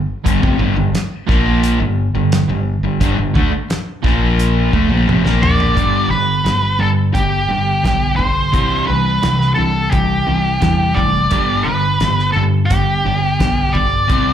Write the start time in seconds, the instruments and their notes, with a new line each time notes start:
0.25 fretless electric bass G1, distorted electric guitar G2 D3, kick, closed hi-hat
0.42 fretless electric bass F1, distorted electric guitar F2 C3, kick
0.59 fretless electric bass G1, distorted electric guitar G2 D3
0.76 fretless electric bass G1, distorted electric guitar G2 D3
0.93 muted overdriven electric guitar stroke, muted fretless electric bass stroke, muted distorted electric guitar stroke, snare, closed hi-hat
1.28 fretless electric bass A#1, distorted electric guitar A#2 F3 A#3, kick, snare
1.63 closed hi-hat
1.80 fretless electric bass G1, distorted electric guitar G2 D3
2.14 fretless electric bass G1, distorted electric guitar G2 D3
2.32 snare, closed hi-hat
2.49 fretless electric bass G1, distorted electric guitar G2 D3
2.83 fretless electric bass G1, distorted electric guitar G2 D3
3.00 fretless electric bass G1, distorted electric guitar G2 D3, kick, closed hi-hat
3.18 fretless electric bass G1, distorted electric guitar G2 D3
3.35 fretless electric bass D2, distorted electric guitar D3 A3, kick
3.52 muted fretless electric bass stroke, muted overdriven electric guitar stroke, muted distorted electric guitar stroke
3.70 muted fretless electric bass stroke, muted overdriven electric guitar stroke, muted distorted electric guitar stroke, snare, closed hi-hat
4.04 fretless electric bass A#1, distorted electric guitar A#2 F3 A#3, kick, snare
4.39 closed hi-hat
4.72 fretless electric bass D2, distorted electric guitar D3 A3, kick
4.89 fretless electric bass A#1, distorted electric guitar A#2 F3
5.07 fretless electric bass F1, distorted electric guitar F2 C3, high tom
5.25 fretless electric bass A#1, distorted electric guitar A#2 F3 A#3, snare
5.42 lead electric guitar D5, mid tom
5.60 floor tom
5.76 fretless electric bass G1, distorted electric guitar G2 D3 G3, kick, closed hi-hat
6.10 fretless electric bass G1, distorted electric guitar G2 D3, lead electric guitar B4
6.44 fretless electric bass G1, distorted electric guitar G2 D3, snare, closed hi-hat
6.79 fretless electric bass G2, distorted electric guitar G2 D3, lead electric guitar A4
7.12 fretless electric bass G1, distorted electric guitar G2 D3, lead electric guitar G4, kick, closed hi-hat
7.49 fretless electric bass G1, distorted electric guitar G2 D3
7.83 fretless electric bass B1, distorted electric guitar G2 D3, kick, snare, closed hi-hat
8.16 distorted electric guitar G2 D3, lead electric guitar C5, kick
8.52 fretless electric bass C2, distorted electric guitar C3 G3 C4, overdriven electric guitar E3, kick, closed hi-hat
8.87 fretless electric bass C2, distorted electric guitar C3 G3, overdriven electric guitar E3, lead electric guitar B4
9.22 fretless electric bass C2, distorted electric guitar C3 G3, overdriven electric guitar E3, snare, closed hi-hat
9.41 snare
9.54 distorted electric guitar C3 G3, overdriven electric guitar E3, lead electric guitar A4
9.59 fretless electric bass C2
9.90 fretless electric bass C2, distorted electric guitar C3 G3, overdriven electric guitar E3, lead electric guitar G4, kick, closed hi-hat
10.27 fretless electric bass C2, distorted electric guitar C3 G3, overdriven electric guitar E3
10.61 fretless electric bass E2, distorted electric guitar C3 G3, overdriven electric guitar E3, kick, snare, closed hi-hat
10.95 fretless electric bass F1, distorted electric guitar C3 G3, overdriven electric guitar E3, lead electric guitar D5, kick
11.30 fretless electric bass G1, distorted electric guitar G2 D3 G3, kick, closed hi-hat
11.63 fretless electric bass G1, distorted electric guitar G2 D3, lead electric guitar B4
12.00 fretless electric bass G1, distorted electric guitar G2 D3, snare, closed hi-hat
12.19 snare
12.32 distorted electric guitar G2 D3, fretless electric bass G2, lead electric guitar A4
12.66 lead electric guitar G4
12.70 fretless electric bass G1, distorted electric guitar G2 D3, kick, closed hi-hat
13.05 fretless electric bass G1, distorted electric guitar G2 D3
13.39 fretless electric bass B1, distorted electric guitar G2 D3, kick, snare, closed hi-hat
13.73 distorted electric guitar G2 D3, lead electric guitar D5, kick
14.08 fretless electric bass C2, distorted electric guitar C3 G3 C4, kick, closed hi-hat